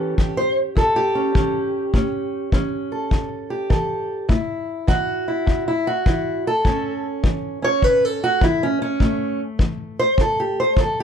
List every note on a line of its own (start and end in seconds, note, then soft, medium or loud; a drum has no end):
0.00 0.14 A2 medium
0.00 0.17 E3 soft
0.00 1.15 C#4 soft
0.00 0.18 G4 medium
0.00 0.37 A4 medium
0.18 0.73 E3 medium
0.18 0.96 G4 soft
0.18 kick medium
0.37 0.57 C5 medium
0.75 1.31 E2 medium
0.75 1.56 A4 medium
0.75 kick medium
0.96 3.49 G4 medium
1.15 1.35 C#4 soft
1.35 1.90 E3 medium
1.35 1.94 C#4 soft
1.35 kick medium
1.94 2.49 A2 medium
1.94 2.52 C#4 soft
1.94 kick medium
2.52 3.08 E3 medium
2.52 4.27 C#4 soft
2.52 kick medium
2.92 3.69 A4 soft
3.11 3.66 E2 medium
3.11 kick medium
3.50 4.27 G4 medium
3.70 4.25 E3 medium
3.70 4.27 A4 soft
3.70 kick medium
4.29 4.84 A2 medium
4.29 5.27 E4 soft
4.29 kick medium
4.87 5.43 E3 medium
4.87 5.67 F#4 medium
4.87 kick medium
5.28 5.67 E4 soft
5.46 6.02 E2 medium
5.46 kick medium
5.68 5.87 E4 medium
5.87 6.46 F#4 medium
6.06 6.61 E3 medium
6.06 6.47 E4 soft
6.06 kick medium
6.47 7.05 A4 medium
6.65 7.20 A2 medium
6.65 7.62 C#4 medium
6.65 kick medium
7.23 7.79 E3 medium
7.23 kick medium
7.62 8.23 C#4 soft
7.62 7.84 C#5 loud
7.82 8.37 E2 medium
7.82 8.05 B4 loud
7.82 kick medium
8.05 8.23 A4 medium
8.24 8.43 F#4 loud
8.41 8.96 E3 medium
8.41 8.62 E4 medium
8.41 kick medium
8.63 8.81 C#4 medium
8.82 9.40 C#4 medium
9.00 9.56 A2 medium
9.00 11.03 A3 soft
9.00 kick medium
9.59 10.14 E3 medium
9.59 kick medium
9.99 10.19 C5 loud
10.17 10.73 E2 medium
10.17 10.39 A4 medium
10.17 kick medium
10.40 10.59 G4 medium
10.60 10.79 C5 medium
10.76 11.03 E3 medium
10.76 kick medium
10.80 10.99 A4 medium